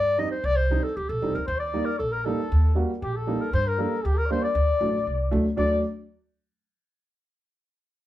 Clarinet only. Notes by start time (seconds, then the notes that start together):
Already playing: D5
0.19 D#5
0.31 C5
0.45 D5
0.56 C5
0.83 A4
0.96 G4
1.09 A4
1.34 A#4
1.47 C5
1.60 D5
1.85 A#4
1.99 A4
2.12 A#4
2.25 A4
3.03 G4
3.16 A4
3.41 A#4
3.54 C5
3.68 A#4
3.80 A4
4.05 G4
4.18 A#4
4.32 C5
4.45 D5
5.57 D5